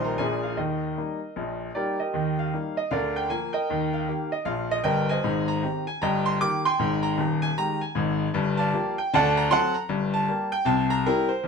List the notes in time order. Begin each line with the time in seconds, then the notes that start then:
Already playing: A#1 A#2 D#3 G3 D#4 C5 C6
0.04 A#4 A#5
0.18 A#1 A#2 F3 A#3 D4 G#4 G#5
0.43 F4 F5
0.57 D#2 D#3 D#4 A#4 D#5
0.97 G3 A#3 D#4
1.36 A#1 A#2
1.75 G3 A#3 D#4 G4 A#4 D5
2.00 G4 A#4 D#5
2.13 D#2 D#3
2.39 F5
2.53 G3 A#3 D#4
2.77 D#5
2.91 D2 D3 A#4 D5 F5
3.16 G5
3.30 F3 A#3 A#4 G#5
3.53 A#4 D#5 G5
3.70 D#2 D#3
3.93 F5
4.08 D#3 A#3 G4
4.32 D#5
4.45 A#1 A#2 F5
4.71 D#5
4.84 G1 G2 A#4 D#5 G5
5.09 C5 D#5 G#5
5.24 G#1 G#2
5.48 A#5
5.63 D#3 C4 G4
5.87 G#5
6.02 G1 G2 D#5 G5 A#5
6.26 C6
6.41 D#3 A#3 G4 D6
6.65 G5 G#5 C6
6.79 G#1 G#2
7.03 A#5
7.18 D#1 D#2
7.42 G#5
7.58 D#3 G#3 G4 A#5
7.81 G#5
7.95 G#1 G#2
8.34 G1 G2
8.57 D5 F5 A5
8.73 F3 A#3 G4
8.98 G5
9.13 D2 D3 D5 F#5 A5
9.37 A#5
9.51 F#3 C4 A4 F#5 A5 C6
9.74 A#5
9.89 G1 G2
10.14 A5
10.28 G3 A#3 G4
10.52 G5
10.65 C2 C3 A5
10.90 A#5
11.06 G3 C4 E4 G4 A#4
11.29 C5
11.44 E1 E2